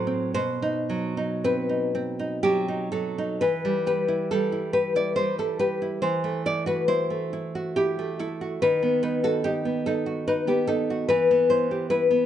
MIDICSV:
0, 0, Header, 1, 2, 480
1, 0, Start_track
1, 0, Key_signature, 1, "minor"
1, 0, Tempo, 1092896
1, 147, Time_signature, 3, 2, 24, 8
1, 627, Tempo, 1005025
1, 1107, Tempo, 978793
1, 1587, Tempo, 903614
1, 2067, Tempo, 862069
1, 4467, Tempo, 826446
1, 5907, Tempo, 790514
1, 6608, End_track
2, 0, Start_track
2, 0, Title_t, "Nylon-string guitar"
2, 0, Program_c, 0, 24
2, 0, Note_on_c, 0, 45, 79
2, 0, Note_on_c, 0, 54, 57
2, 0, Note_on_c, 0, 72, 93
2, 30, Note_on_c, 0, 60, 58
2, 133, Note_off_c, 0, 45, 0
2, 139, Note_off_c, 0, 72, 0
2, 148, Note_off_c, 0, 60, 0
2, 151, Note_off_c, 0, 54, 0
2, 151, Note_on_c, 0, 47, 85
2, 151, Note_on_c, 0, 72, 93
2, 274, Note_on_c, 0, 63, 71
2, 393, Note_on_c, 0, 54, 61
2, 509, Note_off_c, 0, 63, 0
2, 515, Note_on_c, 0, 63, 67
2, 612, Note_off_c, 0, 72, 0
2, 635, Note_on_c, 0, 60, 62
2, 635, Note_on_c, 0, 71, 77
2, 748, Note_off_c, 0, 63, 0
2, 754, Note_on_c, 0, 63, 54
2, 869, Note_off_c, 0, 60, 0
2, 875, Note_on_c, 0, 60, 61
2, 987, Note_off_c, 0, 63, 0
2, 993, Note_on_c, 0, 63, 61
2, 1092, Note_off_c, 0, 71, 0
2, 1105, Note_on_c, 0, 67, 88
2, 1106, Note_off_c, 0, 54, 0
2, 1112, Note_on_c, 0, 54, 65
2, 1224, Note_off_c, 0, 63, 0
2, 1230, Note_on_c, 0, 63, 62
2, 1343, Note_off_c, 0, 54, 0
2, 1343, Note_off_c, 0, 67, 0
2, 1344, Note_on_c, 0, 69, 78
2, 1348, Note_on_c, 0, 54, 53
2, 1469, Note_off_c, 0, 63, 0
2, 1475, Note_on_c, 0, 63, 58
2, 1571, Note_off_c, 0, 47, 0
2, 1573, Note_off_c, 0, 69, 0
2, 1585, Note_off_c, 0, 54, 0
2, 1586, Note_on_c, 0, 71, 89
2, 1588, Note_off_c, 0, 63, 0
2, 1590, Note_off_c, 0, 60, 0
2, 1590, Note_on_c, 0, 52, 70
2, 1713, Note_on_c, 0, 55, 62
2, 1817, Note_off_c, 0, 71, 0
2, 1828, Note_on_c, 0, 67, 52
2, 1830, Note_on_c, 0, 71, 79
2, 1944, Note_on_c, 0, 64, 54
2, 2058, Note_off_c, 0, 71, 0
2, 2064, Note_on_c, 0, 69, 78
2, 2065, Note_off_c, 0, 55, 0
2, 2071, Note_on_c, 0, 55, 53
2, 2176, Note_off_c, 0, 64, 0
2, 2183, Note_on_c, 0, 64, 47
2, 2294, Note_off_c, 0, 67, 0
2, 2297, Note_off_c, 0, 69, 0
2, 2299, Note_on_c, 0, 71, 84
2, 2301, Note_on_c, 0, 67, 64
2, 2416, Note_off_c, 0, 64, 0
2, 2422, Note_off_c, 0, 71, 0
2, 2423, Note_on_c, 0, 64, 50
2, 2426, Note_on_c, 0, 74, 80
2, 2533, Note_off_c, 0, 55, 0
2, 2534, Note_off_c, 0, 74, 0
2, 2536, Note_on_c, 0, 72, 87
2, 2540, Note_on_c, 0, 55, 52
2, 2656, Note_off_c, 0, 64, 0
2, 2658, Note_off_c, 0, 72, 0
2, 2662, Note_on_c, 0, 64, 45
2, 2665, Note_on_c, 0, 69, 70
2, 2776, Note_off_c, 0, 67, 0
2, 2777, Note_off_c, 0, 69, 0
2, 2779, Note_on_c, 0, 71, 73
2, 2783, Note_on_c, 0, 67, 51
2, 2897, Note_off_c, 0, 64, 0
2, 2904, Note_on_c, 0, 64, 53
2, 2995, Note_off_c, 0, 52, 0
2, 3007, Note_off_c, 0, 71, 0
2, 3013, Note_off_c, 0, 55, 0
2, 3015, Note_on_c, 0, 72, 92
2, 3018, Note_off_c, 0, 67, 0
2, 3018, Note_on_c, 0, 52, 67
2, 3019, Note_off_c, 0, 64, 0
2, 3138, Note_on_c, 0, 57, 54
2, 3248, Note_off_c, 0, 72, 0
2, 3259, Note_on_c, 0, 64, 45
2, 3261, Note_on_c, 0, 74, 88
2, 3373, Note_on_c, 0, 66, 59
2, 3377, Note_off_c, 0, 74, 0
2, 3379, Note_on_c, 0, 71, 80
2, 3491, Note_off_c, 0, 64, 0
2, 3493, Note_off_c, 0, 71, 0
2, 3495, Note_on_c, 0, 72, 92
2, 3498, Note_on_c, 0, 64, 59
2, 3613, Note_off_c, 0, 57, 0
2, 3620, Note_on_c, 0, 57, 46
2, 3738, Note_off_c, 0, 64, 0
2, 3745, Note_on_c, 0, 64, 57
2, 3862, Note_off_c, 0, 66, 0
2, 3869, Note_on_c, 0, 66, 57
2, 3967, Note_off_c, 0, 72, 0
2, 3983, Note_off_c, 0, 64, 0
2, 3986, Note_on_c, 0, 67, 85
2, 3990, Note_on_c, 0, 64, 53
2, 4105, Note_off_c, 0, 57, 0
2, 4112, Note_on_c, 0, 57, 48
2, 4221, Note_off_c, 0, 67, 0
2, 4223, Note_off_c, 0, 64, 0
2, 4227, Note_on_c, 0, 69, 64
2, 4229, Note_on_c, 0, 64, 55
2, 4341, Note_off_c, 0, 66, 0
2, 4348, Note_on_c, 0, 66, 55
2, 4445, Note_off_c, 0, 52, 0
2, 4453, Note_off_c, 0, 69, 0
2, 4464, Note_off_c, 0, 64, 0
2, 4464, Note_off_c, 0, 66, 0
2, 4464, Note_on_c, 0, 71, 93
2, 4465, Note_off_c, 0, 57, 0
2, 4468, Note_on_c, 0, 51, 68
2, 4583, Note_on_c, 0, 59, 53
2, 4694, Note_off_c, 0, 71, 0
2, 4701, Note_on_c, 0, 71, 77
2, 4704, Note_on_c, 0, 63, 51
2, 4822, Note_off_c, 0, 71, 0
2, 4822, Note_on_c, 0, 66, 58
2, 4824, Note_on_c, 0, 69, 76
2, 4938, Note_off_c, 0, 66, 0
2, 4940, Note_off_c, 0, 63, 0
2, 4941, Note_on_c, 0, 67, 88
2, 4946, Note_off_c, 0, 69, 0
2, 4947, Note_on_c, 0, 63, 57
2, 5057, Note_off_c, 0, 59, 0
2, 5064, Note_on_c, 0, 59, 44
2, 5175, Note_off_c, 0, 67, 0
2, 5183, Note_off_c, 0, 63, 0
2, 5185, Note_on_c, 0, 69, 77
2, 5190, Note_on_c, 0, 63, 57
2, 5301, Note_on_c, 0, 66, 55
2, 5416, Note_off_c, 0, 69, 0
2, 5420, Note_off_c, 0, 63, 0
2, 5425, Note_on_c, 0, 71, 86
2, 5427, Note_on_c, 0, 63, 55
2, 5534, Note_off_c, 0, 59, 0
2, 5540, Note_on_c, 0, 59, 51
2, 5541, Note_off_c, 0, 66, 0
2, 5543, Note_on_c, 0, 67, 61
2, 5546, Note_off_c, 0, 71, 0
2, 5655, Note_off_c, 0, 63, 0
2, 5657, Note_on_c, 0, 69, 80
2, 5662, Note_on_c, 0, 63, 53
2, 5665, Note_off_c, 0, 67, 0
2, 5790, Note_on_c, 0, 66, 51
2, 5884, Note_off_c, 0, 51, 0
2, 5891, Note_off_c, 0, 69, 0
2, 5896, Note_on_c, 0, 71, 93
2, 5903, Note_off_c, 0, 59, 0
2, 5903, Note_off_c, 0, 63, 0
2, 5903, Note_on_c, 0, 52, 76
2, 5907, Note_off_c, 0, 66, 0
2, 6031, Note_on_c, 0, 59, 60
2, 6135, Note_off_c, 0, 71, 0
2, 6145, Note_on_c, 0, 72, 79
2, 6152, Note_on_c, 0, 64, 52
2, 6275, Note_on_c, 0, 67, 57
2, 6377, Note_off_c, 0, 72, 0
2, 6385, Note_off_c, 0, 64, 0
2, 6390, Note_on_c, 0, 71, 88
2, 6393, Note_on_c, 0, 64, 57
2, 6508, Note_off_c, 0, 59, 0
2, 6515, Note_on_c, 0, 59, 52
2, 6608, Note_off_c, 0, 52, 0
2, 6608, Note_off_c, 0, 59, 0
2, 6608, Note_off_c, 0, 64, 0
2, 6608, Note_off_c, 0, 67, 0
2, 6608, Note_off_c, 0, 71, 0
2, 6608, End_track
0, 0, End_of_file